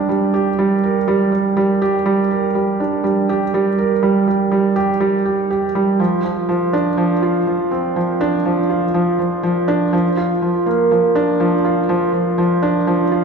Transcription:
felt piano
Already playing: G3 D4 G4 A#4
0.09 G3
0.34 G4
0.59 G3
0.83 A#4
1.08 G3
1.32 G3
1.57 G3
1.82 G4
2.06 G3
2.31 A#4
2.55 G3
2.80 D4
3.04 G3
3.29 G4
3.54 G3
3.78 A#4
4.03 G3
4.27 G3
4.52 G3
4.76 G4
5.00 G3
5.25 G4
5.50 G4
5.75 G3
6.00 F3
6.24 F3
6.49 F3
6.73 D4
6.97 F3
7.22 F4
7.47 F3
7.71 C4
7.96 F3
8.21 D4
8.45 F3
8.70 F4
8.94 F3
9.19 F3
9.43 F3
9.68 D4
9.93 F3
10.17 F4
10.42 F3
10.66 A#3
10.91 F3
11.15 D4
11.40 F3
11.65 F4
11.89 F3
12.13 F3
12.38 F3
12.62 D4
12.87 F3
13.12 F4

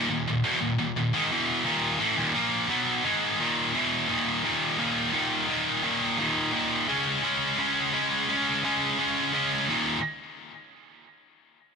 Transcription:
distorted electric guitar
0.10 D#2 A#2
0.27 D#2 A#2
0.44 E2 B2
0.61 D#2 A#2
0.78 D#2 A#2
0.96 D#2 A#2
1.13 G#2 D#3
1.31 E2 B2 E3
1.65 D#2 A#2 D#3
2.00 A2 E3
2.17 D#2 A#2
2.34 A#2 F3 A#3
2.68 B2 F#3 B3
3.04 G#2 D#3 G#3
3.40 D#2 A#2 D#3
3.74 E2 B2 E3
4.08 D#2 A#2 D#3
4.44 D#2 A#2 D#3
4.78 D#2 A#2 D#3
5.13 D#2 A#2 D#3
5.48 D#2 A#2 D#3
5.83 D#2 A#2 D#3
6.19 D#2 A#2 D#3
6.52 D#2 A#2 D#3
6.88 C#3 G#3 C#4
7.23 C#3 G#3 C#4
7.58 C#3 G#3 C#4
7.93 C#3 G#3 C#4
8.29 C#3 G#3 C#4
8.64 C#3 G#3 C#4
8.99 C#3 G#3 C#4
9.33 C#3 G#3 C#4
9.69 D#2 A#2 D#3

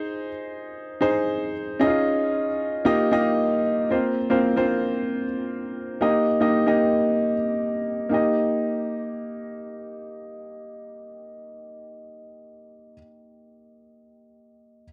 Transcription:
grand piano
Already playing: D#4 G#4 C5
1.01 D#4 G#4 C5
1.79 C#4 D#4 E4 G#4 D#5
1.86 F4
2.85 A#3 D#4 F4 G4 D#5
3.11 A#3 D#4 F4 G4 D#5
3.90 A#3 C4 F4 C5
4.30 A#3 C4 F4 C5
4.56 A#3 C4 F4 C5
6.01 A#3 D#4 G4 D#5
6.40 A#3 D#4 G4 D#5
6.66 A#3 D#4 G4 D#5
8.09 A#3 D#4 G4
8.14 D#5

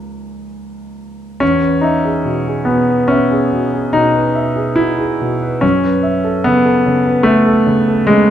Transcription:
grand piano
Already playing: F3 A#3 D#4 G#4 C#5
1.40 E2 C#4
1.61 B4
1.81 D#4 E5
2.05 G#4
2.25 B2
2.47 G#4
2.65 B2 B3
2.89 B4
3.08 C#4 E5
3.31 G#4
3.53 B2
3.74 G#4
3.93 B2 D#4
4.14 B4
4.35 E5
4.56 G#4
4.76 B2 E4
4.99 G#4
5.21 B2
5.42 B4
5.61 F#2 C#4
5.84 B4
6.03 E5
6.24 A4
6.44 C#3 B3
6.65 A4
6.86 C#3
7.06 B4
7.23 A3 E5
7.46 A4
7.67 C#3
7.88 A4
8.07 C#3 G#3

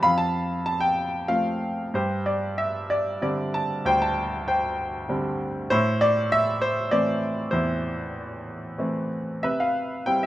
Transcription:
grand piano
0.03 F2 F5 B5
0.18 A5
0.66 A5
0.80 G5
1.28 F3 A3 C4 F5
1.94 G2 G4 C5
2.26 D5
2.58 E5
2.90 D5
3.22 D3 G3 C4 D5
3.54 A5
3.85 D2 C5 G5
4.02 A5
4.48 C5 G5
5.09 D3 G3 C4
5.70 A2 E4 C5
6.01 D5
6.32 E5
6.62 C5
6.91 E3 A3 C4 D5
7.51 E2 E4 C5
8.78 E3 A3 C4
9.43 C3 B4 E5
9.60 F5
10.06 G3 C4 E4 G5
10.23 E5

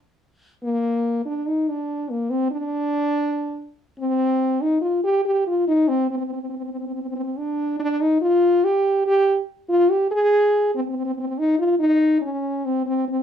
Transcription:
french horn
0.63 A#3
1.25 D4
1.47 D#4
1.69 D4
2.11 A#3
2.30 C4
2.51 D4
3.99 C4
4.61 D#4
4.81 F4
5.04 G4
5.25 G4
5.47 F4
5.68 D#4
5.88 C4
6.10 C4
6.18 C4
6.25 C4
6.32 C4
6.41 C4
6.49 C4
6.56 C4
6.64 C4
6.71 C4
6.79 C4
6.86 C4
6.94 C4
7.02 C4
7.08 C4
7.16 C4
7.23 C4
7.37 D4
7.80 D4
8.01 D#4
8.22 F4
8.64 G4
9.06 G4
9.69 F4
9.90 G4
10.11 G#4
10.75 C4
10.82 C4
10.89 C4
10.96 C4
11.05 C4
11.14 C4
11.20 C4
11.27 C4
11.38 D#4
11.59 F4
11.79 D#4
12.21 C#4
12.65 C4
12.86 C4
13.08 C4

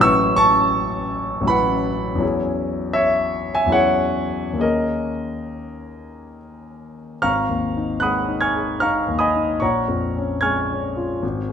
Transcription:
grand piano
Already playing: A1 F#3
0.00 C#4 E4 B4 C#6 E6
0.36 A5 C#6
1.41 A1 F#3 C#4
1.47 E4 B4 F#5 B5
2.15 E2 F#3 C#4
2.21 E4 G#4
2.93 C#5 E5
3.55 E5 G#5
3.66 E2 F#3 C#4
3.70 E4 G#4 C#5 F#5
4.53 D#2 A#3 C#4
4.59 G#4 A#4 D#5
7.22 G#1 F5 A#5 C#6 F6
7.49 D#2
7.77 D#4
8.00 G#3 F#5 B5 D#6 F#6
8.28 D#4
8.41 G#5 C#6 F6 G#6
8.56 G#4
8.80 D#4 F5 A#5 C#6 F6
9.08 D#2
9.19 D#5 G#5 B5 D#6
9.35 D#4
9.60 A#1 C#5 F#5 A#5 C#6
9.88 F2
10.17 C#4
10.41 G#3 G#5 C#6 F6 G#6
10.71 C#4
10.97 F4
11.23 G#1
11.49 G#3

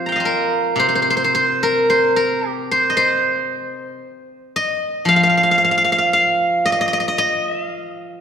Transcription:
guzheng
Already playing: F3 C4 F4 G4 C5 F5
0.06 G5 A#5
0.12 D#5 F5
0.20 C5
0.25 A#4
0.76 C3 C5
0.89 C5
0.95 C5
1.02 C5
1.10 C5
1.17 C5
1.24 C5
1.35 C5
1.63 A#4
1.90 C5
2.16 A#4
2.49 G4
2.71 C5
2.90 D#5
2.97 C5
4.56 D#5
5.05 F3 F5
5.16 F5
5.23 F5
5.29 F5
5.37 F5
5.43 F5
5.51 F5
5.58 F5
5.65 F5
5.71 F5
5.78 F5
5.84 F5
5.92 F5
5.98 F5
6.13 F5
6.66 D#5
6.72 D#5
6.81 D#5
6.88 D#5
6.93 D#5
7.00 D#5
7.08 D#5
7.18 D#5
7.47 E5
7.65 F5

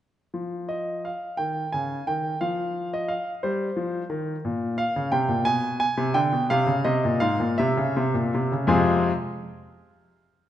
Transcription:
grand piano
0.34 F3
0.69 D#5
1.05 F5
1.37 D#3 G5
1.72 C#3 G#5
2.07 D#3 G5
2.41 F3 F5
2.93 D#5
3.08 F5
3.43 G3 C5
3.76 F3
4.10 D#3
4.45 A#2
4.78 F5
4.96 C#3
5.12 C3 G5
5.28 A#2
5.45 B2 G#5
5.80 G#5
5.97 C3
6.14 D3 G5
6.32 B2
6.50 C3 F5
6.67 C#3
6.84 C3 D#5
7.05 A#2
7.20 G#2 F5
7.40 A#2
7.58 C3 E5
7.77 C#3
7.97 C3
8.14 A#2
8.34 C3
8.52 C#3
8.67 F2 C3 G#3 C4 F4 G#4 G#5

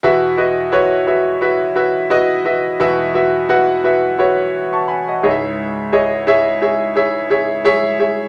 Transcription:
grand piano
0.03 E2 B2 E4 F#4 B4 E5
0.37 E4 F#4 B4 D#5
0.72 E4 F#4 B4 C#5
1.06 E4 F#4 B4 E5
1.41 E4 F#4 B4 E5
1.75 E4 F#4 B4 E5
2.10 E4 F#4 B4 D#5
2.45 E4 F#4 B4 E5
2.80 E2 B2 E4 F#4 B4 E5
3.14 E4 F#4 B4 E5
3.49 E4 F#4 B4 F#5
3.84 E4 F#4 B4 E5
4.18 E4 F#4 B4 C#5
4.73 A5 C#6
4.88 G#5 B5
5.08 D#5 F#5
5.23 C#2 G#2 E4 G#4 C#5 D#5
5.30 E5
5.92 E4 G#4 C#5 D#5
6.27 E4 G#4 C#5 E5
6.61 E4 G#4 C#5 E5
6.95 E4 G#4 C#5 E5
7.30 E4 G#4 C#5 E5
7.65 E4 G#4 C#5 E5
7.99 E4 G#4 C#5 E5

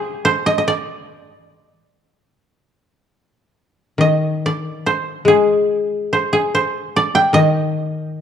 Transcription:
koto
Already playing: G#4 C5
0.25 C5
0.46 D#5
0.58 D#5
0.68 D5
3.98 D#3 D#5
4.46 D5
4.86 C5
5.25 G#3 G#4
6.13 C5
6.33 G#4
6.55 C5
6.96 D5
7.15 G5
7.33 D#3 D#5

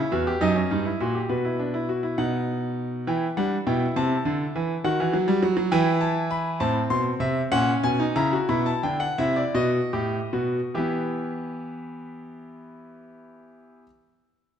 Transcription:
grand piano
Already playing: E4 C#5
0.12 E2 F#4
0.27 G4
0.41 F#2 D#4 D#5
0.56 C#4
0.71 G2 D#4
0.85 E4
1.00 A#2 F#4
1.15 G4
1.29 B2 F#4 B4
1.45 E4
1.59 D4
1.74 E4
1.89 F#4
2.03 E4
2.18 B2 D#4 F#5
3.07 E3 E4 G5
3.37 G3 D4 F#5
3.67 B2 E4 G5
3.96 C3 A5
4.25 D3
4.55 E3
4.84 D#3 F#4 F#5
5.00 E3
5.13 F#3
5.28 G3
5.43 F#3
5.57 F#3
5.72 E3 E4 G5
6.01 A5
6.31 B5
6.60 A2 C4 A5
6.90 B2 C6
7.20 C3 E5
7.52 A#2 C#4 F#5
7.83 B2 G#5
8.00 D#4
8.16 C#3 E4 A#5
8.32 F#4
8.49 B2 E4 B5
8.66 A5
8.83 D3 D4 G5
9.00 F#5
9.18 C3 E4 E5
9.36 D5
9.54 B2 F#4 D#5
9.93 A2 G4
10.33 B2 F#4
10.74 E3 B3 E4 G4 E5

